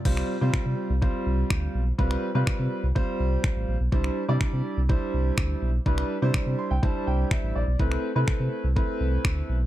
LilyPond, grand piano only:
\new Staff \with { instrumentName = "Grand piano" } { \time 4/4 \key f \lydian \tempo 4 = 124 << { r1 | r1 | r1 | r4. c'''16 g''16 a''8 g''8 e''8 d''8 |
r1 | } \\ { <g c' f' c''>8 r16 <g c' f' c''>4 r16 <g c' f' c''>4.~ <g c' f' c''>16 r16 | <g c' f' b'>8 r16 <g c' f' b'>4 r16 <g c' f' c''>4.~ <g c' f' c''>16 r16 | <g d' e' c''>8 r16 <g d' e' d''>4 r16 <g d' e' c''>4.~ <g d' e' c''>16 r16 | <g d' e' b'>8 r16 <g d' e' c''>4 r16 <g d' e' c''>4.~ <g d' e' c''>16 r16 |
<a c' e' b'>8 r16 <a c' e' b'>4 r16 <a c' e' b'>4.~ <a c' e' b'>16 r16 | } >> }